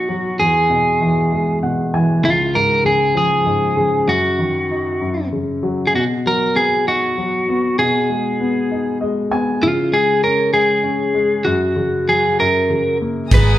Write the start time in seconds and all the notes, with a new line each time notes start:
Already playing: B2 F#3 D#4 F#4
0.09 F#3
0.39 E2 G#4
0.70 B2
1.01 E3
1.32 G#3
1.63 B2 F#5
1.94 E3 G#5
2.23 C#2 F4
2.54 G#2 A#4
2.84 C#3 G#4
3.15 F3 G#4
3.45 G#2
3.77 C#3
4.07 F#2 F#4
4.39 D#3
4.71 D#4
5.01 F#2
5.32 C#3
5.63 F#3
5.87 G#4
5.94 B2 F#4
6.26 F#3 A#4
6.56 B3 G#4
6.87 D#4 F#4
7.17 F#3
7.49 B3
7.79 B2 G#4
8.09 G#3
8.40 B3
8.71 D#4
9.01 G#3 D#5
9.31 B3 G#5
9.62 C#3 F4
9.92 G#3 G#4
10.23 C#4 A#4
10.54 G#3 G#4
10.84 C#4
11.14 G#3
11.45 F#2 F#4
11.76 C#3
12.08 F#3 G#4
12.39 F#2 A#4
12.70 C#3
13.01 A#3
13.31 G#1 G#3 B3 B4 G#5 A#5 D#6, kick, crash